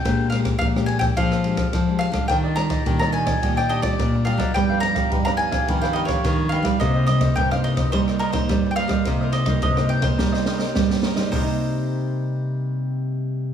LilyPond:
<<
  \new Staff \with { instrumentName = "Mandolin" } { \time 4/4 \key c \minor \tempo 4 = 106 g''8 f''8 f''8 aes''16 g''16 f''4. f''8 | g''8 bes''8. bes''16 aes''8. g''16 ees''16 d''8. f''8 | g''8 bes''8. bes''16 aes''8. g''16 dis''16 des''8. f''8 | ees''8 ees''8 g''16 f''16 ees''8 c''8 bes'16 c''8~ c''32 g''32 f''8~ |
f''8 ees''8 ees''8 g''16 c''4.~ c''16 r8 | c''1 | }
  \new Staff \with { instrumentName = "Cavaquinho" } { \time 4/4 \key c \minor r1 | <d' g' d'' ees''>16 <g' d'' ees''>16 r16 <g' d'' ees''>16 <d' g' d'' ees''>16 <g' d'' ees''>8 <g' d'' ees''>16 <d' g' d'' ees''>16 <g' d'' ees''>16 <d' g' d'' ees''>16 <g' d'' ees''>8 r16 <d' g' d'' ees''>16 <g' d'' ees''>16 | <dis' g' b' f''>16 <g' b' f''>16 r16 <g' b' f''>16 <dis' g' b' f''>16 <g' b' f''>8 <g' b' f''>16 <dis' g' b' f''>16 <g' b' f''>16 <dis' g' b' f''>16 <g' b' f''>8 r16 <dis' g' b' f''>16 <g' b' f''>16 | <ees' bes' c'' ees''>16 <bes' c'' ees''>16 r16 <bes' c'' ees''>16 <ees' bes' c'' ees''>16 <bes' c'' ees''>8 <bes' c'' ees''>16 <ees' bes' c'' ees''>16 <bes' c'' ees''>16 <ees' bes' c'' ees''>16 <bes' c'' ees''>8 r16 <ees' bes' c'' ees''>16 <bes' c'' ees''>16 |
<ees' bes' c'' ees''>16 <bes' c'' ees''>16 r16 <bes' c'' ees''>16 <ees' bes' c'' ees''>16 <bes' c'' ees''>8 <bes' c'' ees''>16 <ees' bes' c'' ees''>16 <bes' c'' ees''>16 <ees' bes' c'' ees''>16 <bes' c'' ees''>8 r16 <ees' bes' c'' ees''>16 <bes' c'' ees''>16 | <ees' bes' c'' ees''>1 | }
  \new Staff \with { instrumentName = "Nylon-string guitar" } { \time 4/4 \key c \minor << { <aes d' g'>8 <aes d' g'>8. <aes d' g'>8. <aes d' g'>16 r16 <aes d' g'>8 r16 <aes d' g'>8 <g d' f'>16~ | <g d' f'>8 <g d' f'>8. <g d' f'>8. <g d' f'>8 r16 <g d' f'>8. <g d' f'>8 | <f b dis'>8 <f b dis'>8. <f b dis'>8. <f b dis'>8. <f b dis'>8. <f b dis'>8 | <g bes ees'>8 <g bes ees'>8 r16 <g bes ees'>8. <g bes ees'>8 r16 <g bes ees'>8. <g bes ees'>16 r16 |
<g bes ees'>8. <g bes ees'>8 <g bes ees'>8 <g bes ees'>16 <g bes ees'>8. <g bes ees'>8 <g bes ees'>8 <g bes ees'>16~ | <g bes ees'>8. r2. r16 | } \\ { bes,4 f4 bes,4 f4 | ees4 bes,4 ees4 bes,4 | g,4 g,4 g,4 g,4 | c4 g,4 c4 g,4 |
c4 g,4 c4 g,4 | <c g bes ees'>1 | } >> }
  \new Staff \with { instrumentName = "Nylon-string guitar" } { \clef bass \time 4/4 \key c \minor bes,4 bes,4 f4 f8. d16 | ees4 ees4 bes,4 bes,8. fis16 | g4 g4 dis4 dis8. g16 | c4 c4 g4 g8. g16 |
c4 c4 g4 g8. g16 | c1 | }
  \new DrumStaff \with { instrumentName = "Drums" } \drummode { \time 4/4 <bd cymr ss>8 <cymr ss>16 <bd cymr ss>16 <bd cymr>16 ss16 cymr16 <bd cymr ss>16 <bd cymr>16 ss16 cymr16 <bd cymr ss>16 <bd cymr ss>8 cymr16 <bd cymr ss>16 | <bd cymr ss>8 <cymr ss>16 <bd cymr ss>16 <bd cymr>16 ss16 cymr16 <bd cymr ss>16 <bd cymr>16 ss16 cymr16 <bd cymr ss>16 <bd cymr ss>8 cymr16 <bd cymr ss>16 | <bd cymr ss>8 <cymr ss>16 <bd cymr ss>16 <bd cymr>16 ss16 cymr16 <bd cymr ss>16 <bd cymr>16 ss16 cymr16 <bd cymr ss>16 <bd cymr ss>8 cymr16 <bd cymr ss>16 | <bd cymr ss>8 <cymr ss>16 <bd cymr ss>16 <bd cymr>16 ss16 cymr16 <bd cymr ss>16 <bd cymr>16 ss16 cymr16 <bd cymr ss>16 <bd cymr ss>8 cymr16 <bd cymr ss>16 |
<bd cymr ss>8 <cymr ss>16 <bd cymr ss>16 <bd cymr>16 ss16 cymr16 <bd cymr ss>16 <bd sn>16 sn16 sn16 sn16 <bd sn>16 sn16 sn16 sn16 | <hho bd>4 r4 r4 r4 | }
>>